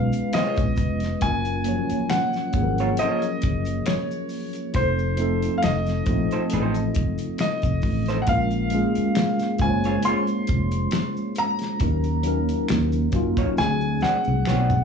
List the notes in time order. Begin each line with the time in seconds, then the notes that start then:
Already playing: B1 G#3 B3 C#4 F4 B4 F5
0.12 closed hi-hat, maracas
0.33 B3 F4 G#4 C#5 D#5, finger snap, snare, closed hi-hat, maracas
0.56 A#1, kick, closed hi-hat, maracas
0.76 F1, kick, closed hi-hat, maracas
1.00 snare, closed hi-hat, maracas
1.20 F#1 F#3 A#3 C#4 F4 G#5, kick, closed hi-hat, maracas
1.24 A#4
1.45 closed hi-hat, maracas
1.64 F3 F#3 A#3 C#4, closed hi-hat, maracas
1.68 C#5
1.90 muted fingered electric bass stroke, closed hi-hat, maracas
2.10 F#5, finger snap, snare, closed hi-hat, maracas
2.33 snare, maracas
2.52 G#1 F3 F#3 A#3 C#4 G#4, kick, closed hi-hat, maracas
2.63 A#4
2.78 C#4 F4 A#4 C#5, closed hi-hat, maracas
2.97 C#4 F4 A#4 C#5 D#5, closed hi-hat, maracas
3.22 closed hi-hat, maracas
3.41 F#1, kick, closed hi-hat, maracas
3.65 closed hi-hat, maracas
3.86 C#5, finger snap, snare, closed hi-hat, maracas
4.11 maracas
4.29 open hi-hat, maracas
4.53 closed hi-hat, maracas
4.73 F1 F3 A3 C4 D#4 C5, kick, closed hi-hat, maracas
4.77 A4
4.99 maracas
5.17 F3 A3 C4 D#4, closed hi-hat, maracas
5.21 A4
5.42 closed hi-hat, maracas
5.58 F5
5.63 F1 D#5, finger snap, snare, closed hi-hat, maracas
5.87 snare, closed hi-hat, maracas
6.06 A#1 F3 A3 C4 D#4 F4, kick, closed hi-hat, maracas
6.31 C4 D#4 A4 C5, closed hi-hat, maracas
6.50 A1 C4 D#4 A4, closed hi-hat, maracas
6.54 C5
6.74 closed hi-hat, maracas
6.94 F#1, kick, closed hi-hat, maracas
7.18 closed hi-hat, maracas
7.38 D#5, finger snap, snare, closed hi-hat, maracas
7.62 F1, kick, closed hi-hat, maracas
7.82 A1, kick, open hi-hat, maracas
8.06 D#4 A4 C5, snare, closed hi-hat, maracas
8.10 C4
8.22 F#5
8.26 A#1 G#3 A#3 C#4 F4 F5, kick, closed hi-hat, maracas
8.31 A#4
8.51 closed hi-hat, maracas
8.70 G#3 A#3 C#4 F4, closed hi-hat, maracas
8.75 G#4
8.95 muted fingered electric bass stroke, closed hi-hat, maracas
9.15 finger snap, snare, closed hi-hat, maracas
9.39 snare, closed hi-hat, maracas
9.58 F#1 G#3 A#3 C#4 F4 G#5, kick, closed hi-hat, maracas
9.63 C5
9.70 C#5
9.84 C#4 F4 G#4 C#5, closed hi-hat, maracas
10.03 C#4 F4 G#4 C#5 C6, closed hi-hat, maracas
10.27 closed hi-hat, maracas
10.47 F1, kick, closed hi-hat, maracas
10.71 closed hi-hat, maracas
10.91 finger snap, snare, closed hi-hat, maracas
11.17 maracas
11.35 A#5, closed hi-hat, maracas
11.59 snare, closed hi-hat, maracas
11.79 D#2 F#3 A#3 C#4 D#4, kick, closed hi-hat, maracas
11.84 A#4
12.04 closed hi-hat, maracas
12.23 F#3 A#3 C#4 D#4, closed hi-hat, maracas
12.27 A#4
12.49 closed hi-hat, maracas
12.68 D#2, finger snap, snare, closed hi-hat, maracas
12.92 closed hi-hat, maracas
13.12 F#2 F#3 A#3 C#4 D#4, kick, closed hi-hat, maracas
13.16 F4
13.37 A#3 D#4 F#4 C#5, kick, closed hi-hat, maracas
13.56 D2 F3 A3 C4 D4 G#5, muted clean electric guitar stroke, snare, maracas
13.60 F#3 G#4
13.81 maracas
14.01 C4 F#4 G#4 D5 F#5, muted fingered electric bass stroke, snare, maracas
14.24 C2, maracas
14.45 B1 C4 F#4 G#4 D5, finger snap, snare, maracas
14.70 mid tom, maracas